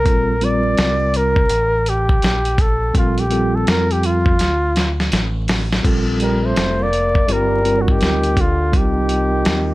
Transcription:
0.00 0.46 A#4 loud
0.04 0.74 A#1 loud
0.04 0.33 G3 medium
0.04 0.34 C4 medium
0.04 0.34 F4 medium
0.04 0.34 A4 medium
0.04 kick loud
0.04 closed hi-hat loud
0.41 1.44 G3 medium
0.41 1.45 C4 medium
0.41 1.45 F4 medium
0.41 1.45 A#4 medium
0.41 1.18 D5 loud
0.41 closed hi-hat medium
0.77 1.47 C2 medium
0.77 snare loud
0.77 closed hi-hat medium
1.14 1.90 A#4 loud
1.14 closed hi-hat medium
1.36 kick medium
1.50 2.19 A1 medium
1.50 closed hi-hat loud
1.86 2.62 G4 medium
1.86 closed hi-hat medium
2.09 kick medium
2.22 2.91 A#1 medium
2.22 snare loud
2.22 closed hi-hat medium
2.45 closed hi-hat medium
2.58 2.96 A4 medium
2.58 kick loud
2.58 closed hi-hat medium
2.94 3.63 A#1 loud
2.94 3.22 G3 medium
2.94 3.23 C4 medium
2.94 3.23 F4 medium
2.94 3.23 A4 medium
2.94 kick loud
2.94 closed hi-hat loud
2.98 3.21 F4 medium
3.18 3.57 G4 medium
3.18 closed hi-hat medium
3.30 4.33 G3 medium
3.30 4.34 C4 medium
3.30 4.34 F4 medium
3.30 4.34 A4 medium
3.30 closed hi-hat medium
3.55 3.71 A4 medium
3.67 4.40 F2 medium
3.67 3.94 A#4 loud
3.67 snare loud
3.67 closed hi-hat medium
3.91 4.07 G4 medium
3.91 closed hi-hat medium
4.03 5.13 F4 loud
4.03 closed hi-hat medium
4.26 kick medium
4.39 5.08 D2 medium
4.39 snare medium
4.39 closed hi-hat loud
4.76 snare medium
4.76 closed hi-hat medium
5.00 snare medium
5.12 5.81 A1 loud
5.12 snare medium
5.12 closed hi-hat medium
5.48 snare loud
5.48 open hi-hat medium
5.72 snare loud
5.83 6.53 A#1 medium
5.83 6.86 G3 medium
5.83 6.87 C4 medium
5.83 6.87 F4 medium
5.83 6.87 A4 loud
5.83 kick loud
5.83 closed hi-hat loud
5.83 crash medium
6.20 6.45 G3 medium
6.20 6.47 A#4 medium
6.20 closed hi-hat medium
6.44 6.82 A3 medium
6.44 6.84 C5 medium
6.56 7.25 F1 medium
6.56 snare loud
6.56 closed hi-hat medium
6.80 7.32 A#3 loud
6.80 7.34 D5 loud
6.93 closed hi-hat medium
7.15 kick medium
7.28 7.98 G1 loud
7.28 7.59 G3 medium
7.28 7.81 G3 medium
7.28 7.59 C4 medium
7.28 7.60 F4 medium
7.28 7.60 A#4 medium
7.28 closed hi-hat medium
7.32 7.83 A#4 loud
7.64 8.41 G3 medium
7.64 8.41 C4 medium
7.64 8.42 F4 medium
7.64 8.42 A#4 medium
7.64 closed hi-hat medium
7.79 7.90 D3 medium
7.79 7.93 F#4 medium
7.88 8.40 D#3 medium
7.88 8.42 G4 loud
7.88 kick medium
8.01 8.73 D2 medium
8.01 snare loud
8.01 closed hi-hat medium
8.23 closed hi-hat soft
8.37 8.76 D3 medium
8.37 kick medium
8.37 closed hi-hat medium
8.41 8.79 F4 medium
8.72 9.42 C2 loud
8.72 9.74 D#3 medium
8.72 9.74 G3 medium
8.72 9.74 C4 medium
8.72 9.74 F4 medium
8.72 9.74 A#4 medium
8.72 kick loud
8.72 closed hi-hat loud
8.77 9.74 G4 medium
9.09 closed hi-hat medium
9.45 9.74 D#2 medium
9.45 snare loud
9.45 closed hi-hat medium

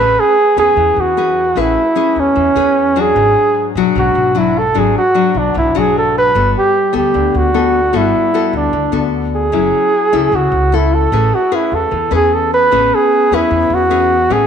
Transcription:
0.00 0.16 A1 medium
0.00 0.75 A3 soft
0.00 0.37 C#4 soft
0.00 0.37 G#4 soft
0.00 0.21 B4 loud
0.00 0.37 B4 medium
0.20 0.58 G#4 loud
0.57 0.75 E2 medium
0.57 1.14 C#4 medium
0.57 1.14 G#4 medium
0.57 1.02 G#4 medium
0.57 1.14 B4 medium
0.76 0.95 E2 medium
0.76 1.54 E3 soft
0.96 1.52 E2 medium
1.00 1.61 F#4 medium
1.17 1.42 C#4 medium
1.17 1.43 G#4 soft
1.17 1.43 B4 medium
1.56 1.74 A1 medium
1.56 2.34 A3 soft
1.56 1.82 C#4 soft
1.56 1.82 G#4 soft
1.56 1.82 B4 medium
1.60 2.21 E4 loud
1.96 2.52 C#4 medium
1.96 2.53 G#4 medium
1.96 2.53 B4 medium
2.16 2.35 E2 medium
2.16 3.02 C#4 medium
2.35 2.54 E2 medium
2.35 3.13 E3 medium
2.55 3.11 E2 medium
2.55 2.92 C#4 medium
2.55 2.93 G#4 medium
2.55 2.93 B4 medium
2.96 3.72 F#3 soft
2.96 3.72 D4 medium
2.96 3.73 F#4 medium
3.00 3.71 G#4 loud
3.16 3.34 G#1 medium
3.16 3.94 G#2 medium
3.75 3.94 B1 medium
3.75 4.33 F#3 medium
3.75 4.33 D4 medium
3.75 4.33 F#4 medium
3.95 4.14 B1 medium
3.95 4.73 G#2 medium
3.95 4.40 F#4 medium
4.15 4.71 B1 medium
4.35 4.61 F#3 medium
4.35 4.61 D4 soft
4.35 4.60 E4 medium
4.35 4.61 F#4 medium
4.58 4.80 A4 medium
4.74 4.94 G#1 medium
4.74 5.52 G#2 soft
4.74 5.00 F#3 soft
4.74 5.01 D4 soft
4.74 5.00 F#4 medium
4.79 4.97 G#4 medium
4.98 5.40 F#4 loud
5.15 5.71 F#3 soft
5.15 5.71 D4 medium
5.15 5.72 F#4 medium
5.35 5.53 B1 medium
5.35 5.56 D4 medium
5.54 5.73 B1 medium
5.54 6.32 G#2 soft
5.54 5.80 E4 medium
5.75 6.30 B1 medium
5.75 6.31 F#3 medium
5.75 6.31 D4 medium
5.75 6.32 F#4 medium
5.75 5.96 G#4 medium
5.98 6.15 A4 medium
6.18 6.53 B4 medium
6.35 6.53 G1 medium
6.35 7.12 G3 soft
6.35 6.74 B3 soft
6.35 6.74 F#4 soft
6.35 6.75 A4 medium
6.59 6.93 G4 medium
6.93 7.13 D2 medium
6.93 7.50 B3 medium
6.93 7.50 A4 medium
6.97 7.38 G4 medium
7.14 7.33 D2 medium
7.14 7.92 D3 soft
7.34 7.90 D2 medium
7.34 7.98 F#4 medium
7.54 7.80 B3 medium
7.54 7.80 F#4 soft
7.54 7.80 A4 medium
7.93 8.12 G1 loud
7.93 8.71 G3 medium
7.93 8.30 B3 soft
7.93 8.55 E4 medium
7.93 8.30 F#4 medium
7.93 8.30 A4 medium
8.34 8.73 B3 medium
8.34 8.73 F#4 medium
8.34 8.74 A4 medium
8.53 8.72 D2 medium
8.53 9.04 D4 medium
8.73 8.91 D2 medium
8.73 9.51 D3 soft
8.92 9.48 D2 medium
8.92 9.49 B3 medium
8.92 9.49 F#4 medium
8.92 9.49 A4 medium
9.36 10.37 G#4 medium
9.52 9.71 F#1 medium
9.52 10.30 F#3 medium
9.52 9.92 C#4 soft
9.52 9.93 E4 soft
10.13 10.31 C#2 medium
10.13 10.69 C#4 medium
10.13 10.69 E4 medium
10.13 10.69 A4 medium
10.32 10.51 C#2 medium
10.32 11.10 C#3 medium
10.32 10.77 F#4 medium
10.52 11.08 C#2 medium
10.72 11.09 C#4 medium
10.72 11.10 E4 soft
10.72 10.96 E4 medium
10.72 11.09 A4 medium
10.95 11.36 A4 medium
11.12 11.31 A1 medium
11.12 11.90 A3 medium
11.12 11.38 C#4 soft
11.12 11.38 G#4 medium
11.12 11.38 B4 medium
11.35 11.56 F#4 medium
11.52 11.91 C#4 soft
11.52 11.76 E4 medium
11.52 11.91 G#4 medium
11.52 11.92 B4 medium
11.72 11.90 E2 medium
11.72 12.13 A4 medium
11.91 12.10 E2 medium
11.91 12.69 E3 soft
12.11 12.67 E2 medium
12.11 12.68 C#4 medium
12.11 12.68 G#4 soft
12.11 12.68 B4 medium
12.15 12.35 G#4 medium
12.34 12.53 A4 medium
12.54 12.96 B4 loud
12.71 12.90 A1 loud
12.71 13.49 A3 soft
12.71 14.47 B3 medium
12.71 13.28 C#4 medium
12.71 13.28 G#4 soft
12.71 13.28 B4 medium
12.95 13.36 G#4 medium
13.31 13.50 E2 medium
13.31 13.88 C#4 medium
13.31 13.76 E4 medium
13.31 13.88 G#4 medium
13.31 13.89 B4 medium
13.50 13.69 E2 medium
13.50 14.29 E3 soft
13.70 14.26 E2 medium
13.74 14.34 F#4 loud
13.90 14.16 C#4 medium
13.90 14.16 G#4 medium
13.90 14.17 B4 medium
14.30 14.47 A1 medium
14.30 14.47 A3 soft
14.30 14.47 C#4 soft
14.30 14.47 G#4 soft
14.30 14.47 G#4 medium
14.30 14.47 B4 soft

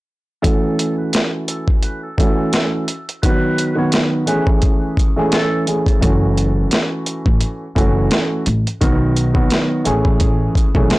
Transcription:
0.42 2.05 E3 medium
0.42 2.05 A3 medium
0.42 2.06 C#4 medium
0.42 2.06 F#4 medium
0.42 0.95 A4 loud
0.42 kick medium
0.42 closed hi-hat loud
0.79 closed hi-hat medium
0.98 1.12 B4 medium
1.13 snare loud
1.13 closed hi-hat medium
1.48 1.66 A4 medium
1.48 closed hi-hat medium
1.68 kick medium
1.83 2.01 B4 medium
1.83 closed hi-hat medium
2.03 2.17 A4 medium
2.17 2.83 E3 medium
2.17 2.83 A3 medium
2.17 2.84 C#4 medium
2.17 2.84 F#4 loud
2.17 2.69 A4 medium
2.17 kick medium
2.17 closed hi-hat medium
2.53 snare loud
2.53 closed hi-hat medium
2.88 closed hi-hat medium
3.09 closed hi-hat medium
3.23 3.72 D#3 loud
3.23 3.73 F#3 medium
3.23 3.73 B3 medium
3.23 3.74 F#4 loud
3.23 3.74 B4 loud
3.23 kick medium
3.23 closed hi-hat loud
3.58 closed hi-hat medium
3.75 4.27 D#3 medium
3.75 4.28 F#3 medium
3.75 4.28 B3 medium
3.75 4.28 F#4 loud
3.75 3.92 C#5 medium
3.92 snare loud
3.92 closed hi-hat medium
4.26 5.08 E3 medium
4.26 5.09 A3 medium
4.26 5.09 C#4 medium
4.26 5.10 G#4 medium
4.26 4.45 B4 medium
4.26 closed hi-hat medium
4.47 kick loud
4.62 kick loud
4.62 closed hi-hat medium
4.97 kick medium
4.97 closed hi-hat medium
5.16 5.29 E3 medium
5.16 5.30 A3 medium
5.16 5.30 C#4 medium
5.16 5.36 G#4 medium
5.30 5.64 E3 medium
5.30 5.64 A3 medium
5.30 5.65 C#4 medium
5.30 5.64 A4 medium
5.30 5.65 A4 medium
5.30 snare loud
5.30 closed hi-hat medium
5.66 5.99 E3 medium
5.66 6.00 A3 medium
5.66 6.00 C#4 medium
5.66 6.00 G#4 medium
5.66 closed hi-hat medium
5.86 kick medium
5.86 closed hi-hat medium
6.01 6.63 F#1 loud
6.01 7.63 E3 medium
6.01 7.64 A3 medium
6.01 7.64 C#4 medium
6.01 7.65 F#4 medium
6.01 kick medium
6.01 closed hi-hat loud
6.38 closed hi-hat medium
6.71 snare loud
6.71 closed hi-hat loud
7.06 closed hi-hat medium
7.26 7.40 A1 medium
7.26 kick loud
7.41 closed hi-hat medium
7.75 8.07 F#1 medium
7.75 8.41 E3 medium
7.75 8.41 A3 medium
7.75 8.42 C#4 medium
7.75 8.42 F#4 loud
7.75 kick medium
7.75 closed hi-hat medium
8.11 snare loud
8.11 closed hi-hat medium
8.46 8.63 A1 medium
8.46 closed hi-hat medium
8.67 closed hi-hat medium
8.81 9.42 B1 loud
8.81 9.30 D#3 loud
8.81 9.31 F#3 medium
8.81 9.31 B3 medium
8.81 9.32 F#4 loud
8.81 kick medium
8.81 closed hi-hat loud
9.16 closed hi-hat medium
9.33 9.85 D#3 medium
9.33 9.86 F#3 medium
9.33 9.86 B3 medium
9.33 9.86 F#4 loud
9.33 kick medium
9.50 snare loud
9.50 closed hi-hat medium
9.84 10.47 A1 medium
9.84 10.66 E3 medium
9.84 10.67 A3 medium
9.84 10.67 C#4 medium
9.84 10.68 G#4 loud
9.84 closed hi-hat medium
10.05 kick loud
10.20 kick medium
10.20 closed hi-hat medium
10.55 kick medium
10.55 closed hi-hat medium
10.74 10.89 B1 medium
10.74 10.87 E3 medium
10.74 10.88 A3 medium
10.74 10.89 C#4 medium
10.74 10.89 G#4 medium
10.74 kick medium
10.88 10.99 E3 medium
10.88 10.99 A3 medium
10.88 10.99 C#4 medium
10.88 10.99 G#4 medium
10.88 snare loud
10.88 closed hi-hat medium

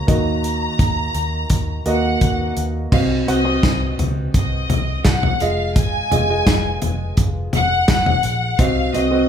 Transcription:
0.00 0.08 F#4 medium
0.00 0.10 C#5 medium
0.07 0.67 D#2 medium
0.07 1.10 D#3 medium
0.07 1.22 A#3 medium
0.07 1.22 F#4 medium
0.07 1.22 D#5 medium
0.07 2.18 A#5 medium
0.07 kick medium
0.07 closed hi-hat medium
0.44 closed hi-hat medium
0.79 1.08 D#2 medium
0.79 kick medium
0.79 closed hi-hat medium
1.15 1.44 D#2 medium
1.15 closed hi-hat medium
1.50 1.79 D#2 medium
1.50 kick medium
1.50 closed hi-hat medium
1.86 2.15 D#2 medium
1.86 2.71 A#3 medium
1.86 2.71 F#4 medium
1.86 2.71 D#5 medium
1.86 2.53 F#5 medium
1.86 closed hi-hat medium
2.21 2.50 D#2 medium
2.21 kick medium
2.21 closed hi-hat medium
2.57 2.86 D#2 medium
2.57 closed hi-hat medium
2.92 3.21 C2 medium
2.92 3.95 C3 soft
2.92 3.20 C4 medium
2.92 3.21 F#4 medium
2.92 3.21 D#5 medium
2.92 3.08 F5 medium
2.92 kick medium
2.92 crash medium
3.27 3.57 C2 medium
3.27 3.42 C4 medium
3.27 3.42 F#4 medium
3.27 3.95 D#5 medium
3.27 3.42 F#5 medium
3.27 closed hi-hat medium
3.44 4.59 C4 medium
3.44 4.59 F#4 medium
3.44 4.59 C5 medium
3.63 3.92 C2 medium
3.63 kick loud
3.63 snare medium
3.63 closed hi-hat medium
3.99 4.28 C#2 medium
3.99 closed hi-hat medium
3.99 floor tom medium
4.34 4.63 C2 medium
4.34 5.02 D#5 medium
4.34 kick medium
4.34 closed hi-hat medium
4.70 4.99 C2 medium
4.70 closed hi-hat medium
4.70 floor tom medium
5.04 5.34 C2 medium
5.04 5.38 F#5 medium
5.04 kick medium
5.04 snare medium
5.04 closed hi-hat medium
5.23 floor tom medium
5.40 5.99 F1 medium
5.40 5.98 G#3 medium
5.40 5.98 F4 medium
5.40 5.98 D#5 medium
5.40 5.76 F5 medium
5.40 closed hi-hat medium
5.76 7.14 G#5 medium
5.76 kick loud
5.76 closed hi-hat medium
6.11 6.41 F1 medium
6.11 6.26 G#3 medium
6.11 6.26 F4 medium
6.11 6.26 D#5 medium
6.11 closed hi-hat medium
6.11 floor tom medium
6.29 7.43 G#3 medium
6.29 7.43 F4 medium
6.29 7.43 D#5 medium
6.47 6.76 F1 medium
6.47 kick loud
6.47 snare medium
6.47 closed hi-hat medium
6.82 7.12 F1 medium
6.82 closed hi-hat medium
6.82 floor tom medium
7.17 7.47 F1 medium
7.17 kick medium
7.17 closed hi-hat medium
7.53 7.83 F1 medium
7.53 8.56 F#5 loud
7.53 closed hi-hat medium
7.53 floor tom medium
7.88 8.18 F1 medium
7.88 kick loud
7.88 snare loud
7.88 closed hi-hat medium
8.06 floor tom medium
8.23 8.53 A#1 medium
8.23 closed hi-hat medium
8.59 8.88 C2 medium
8.59 9.29 C3 medium
8.59 8.88 C4 medium
8.59 8.88 F#4 medium
8.59 8.88 D#5 medium
8.59 8.95 F5 medium
8.59 kick loud
8.59 closed hi-hat medium
8.94 9.24 C2 medium
8.94 9.09 C4 medium
8.94 9.09 F#4 medium
8.94 9.29 D#5 medium
8.94 9.09 D#5 medium
8.94 closed hi-hat medium
9.11 9.29 C4 medium
9.11 9.29 F#4 medium
9.11 9.29 D#5 medium

